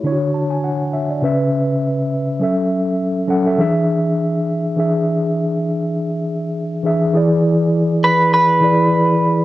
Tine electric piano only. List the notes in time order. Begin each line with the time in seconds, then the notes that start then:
0.03 D3 D4 E4 C#5
0.12 F#4
0.34 A5
0.50 G#5
0.64 F#5
0.93 E5
1.10 D5
1.22 C#3 C#4 B4 E5
2.39 F#3 C#4 A4 E5
3.27 F#3 C#4 A4 F#5
3.44 F#3 C#4 A4 E5
3.58 E3 D4 G#4 E5
4.77 E3 D4 G#4 E5
6.83 E3 D4 G#4 E5
7.13 E3 E4 G#4 D5
8.61 E3 E4 G#4 D5